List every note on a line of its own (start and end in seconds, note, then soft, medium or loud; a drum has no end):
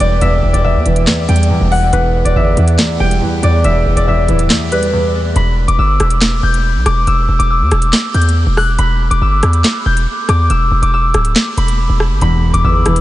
0.00 0.21 E1 loud
0.00 0.21 E2 medium
0.00 0.22 E3 medium
0.00 0.64 G3 medium
0.00 0.55 B4 medium
0.00 0.53 D5 medium
0.00 0.21 E5 medium
0.00 1.13 G5 medium
0.00 closed hi-hat medium
0.21 0.42 E1 loud
0.21 0.63 E2 medium
0.21 0.64 E5 loud
0.21 closed hi-hat medium
0.43 0.53 E1 loud
0.53 0.77 E1 loud
0.53 2.25 D5 medium
0.53 closed hi-hat medium
0.64 1.06 E2 medium
0.64 2.36 E5 medium
0.75 0.85 E2 loud
0.86 1.06 E1 loud
0.86 1.93 E3 medium
0.86 closed hi-hat medium
0.96 closed hi-hat medium
1.07 1.49 E2 medium
1.07 snare loud
1.07 clap medium
1.29 1.59 E2 loud
1.29 1.93 G3 medium
1.29 1.78 G5 medium
1.29 closed hi-hat medium
1.36 closed hi-hat medium
1.43 closed hi-hat medium
1.50 1.91 E2 medium
1.61 1.92 E1 loud
1.72 3.06 F#5 medium
1.72 open hi-hat medium
1.93 2.24 E1 loud
1.93 2.34 E2 medium
1.93 3.98 B4 medium
1.93 closed hi-hat medium
2.25 2.35 E1 loud
2.25 3.43 D5 medium
2.25 closed hi-hat medium
2.36 2.56 G1 loud
2.36 2.77 E2 medium
2.36 3.64 E5 medium
2.57 2.78 E2 loud
2.57 3.64 E3 loud
2.57 closed hi-hat medium
2.68 closed hi-hat medium
2.79 3.20 E2 medium
2.79 snare loud
2.79 clap medium
2.79 closed hi-hat medium
3.00 3.21 E1 loud
3.00 4.07 G3 medium
3.00 4.55 G5 medium
3.11 closed hi-hat medium
3.22 3.63 E2 medium
3.43 3.64 E2 loud
3.43 3.96 D5 medium
3.43 closed hi-hat medium
3.64 3.85 E1 loud
3.64 4.06 E2 medium
3.64 4.08 E5 loud
3.64 closed hi-hat medium
3.86 3.96 E1 loud
3.97 4.27 E1 loud
3.97 5.81 D5 medium
3.97 closed hi-hat medium
4.07 4.49 E2 medium
4.07 5.80 E5 medium
4.28 4.49 D1 loud
4.28 5.36 E3 loud
4.28 closed hi-hat medium
4.39 closed hi-hat medium
4.50 4.91 E2 medium
4.50 snare loud
4.50 clap medium
4.72 5.36 G3 medium
4.72 6.77 B4 medium
4.72 closed hi-hat medium
4.83 closed hi-hat medium
4.93 5.36 E2 medium
5.36 5.67 E1 loud
5.36 6.71 B5 loud
5.36 closed hi-hat medium
5.68 5.78 E1 loud
5.68 6.86 D6 medium
5.68 closed hi-hat medium
5.79 5.99 G1 loud
5.79 6.93 E6 medium
6.00 6.41 E1 loud
6.00 cross-stick medium
6.00 closed hi-hat medium
6.10 closed hi-hat medium
6.21 snare loud
6.21 clap loud
6.21 closed hi-hat medium
6.43 6.77 E1 loud
6.43 7.48 G6 medium
6.54 closed hi-hat medium
6.75 6.85 B1 loud
6.86 7.06 E1 loud
6.86 7.39 D6 medium
6.86 cross-stick medium
6.86 closed hi-hat medium
7.07 7.28 E1 loud
7.07 7.50 E6 loud
7.07 closed hi-hat medium
7.29 7.39 E1 loud
7.39 7.62 E1 loud
7.39 8.61 D6 medium
7.39 closed hi-hat medium
7.50 8.64 E6 medium
7.61 7.71 E2 loud
7.71 7.92 E1 loud
7.71 cross-stick medium
7.71 closed hi-hat medium
7.82 closed hi-hat medium
7.93 snare loud
7.93 clap medium
8.14 8.45 E2 loud
8.14 8.63 G6 medium
8.14 closed hi-hat medium
8.22 closed hi-hat medium
8.29 closed hi-hat medium
8.47 8.77 E1 loud
8.57 9.63 F#6 medium
8.57 cross-stick medium
8.57 open hi-hat medium
8.79 9.10 E1 loud
8.79 10.14 B5 medium
8.79 closed hi-hat medium
9.11 9.21 E1 loud
9.11 10.29 D6 medium
9.11 closed hi-hat medium
9.22 9.42 G1 loud
9.22 10.36 E6 medium
9.43 9.64 E2 loud
9.43 cross-stick medium
9.43 closed hi-hat medium
9.53 closed hi-hat medium
9.64 snare loud
9.64 clap medium
9.64 closed hi-hat medium
9.86 10.06 E1 loud
9.86 10.91 G6 medium
9.97 closed hi-hat medium
10.29 10.49 E2 loud
10.29 10.82 D6 medium
10.29 cross-stick medium
10.29 closed hi-hat medium
10.50 10.71 E1 loud
10.50 10.93 E6 loud
10.50 closed hi-hat medium
10.71 10.82 E1 loud
10.82 11.13 E1 loud
10.82 12.04 D6 medium
10.82 closed hi-hat medium
10.94 12.07 E6 medium
11.14 11.35 D1 loud
11.14 cross-stick medium
11.14 closed hi-hat medium
11.25 closed hi-hat medium
11.36 snare loud
11.36 clap medium
11.57 11.88 E1 loud
11.57 12.22 B5 medium
11.57 closed hi-hat medium
11.68 closed hi-hat medium
11.89 12.12 E1 loud
12.00 cross-stick medium
12.11 12.21 G1 loud
12.21 12.52 E1 loud
12.21 12.63 E2 medium
12.21 13.01 B5 loud
12.21 closed hi-hat medium
12.53 12.64 E1 loud
12.53 13.01 D6 medium
12.53 closed hi-hat medium
12.64 12.85 G1 loud
12.64 13.01 E2 medium
12.64 13.01 E6 medium
12.86 13.01 E1 loud
12.86 13.01 E3 medium
12.86 cross-stick medium
12.86 closed hi-hat medium
12.96 closed hi-hat medium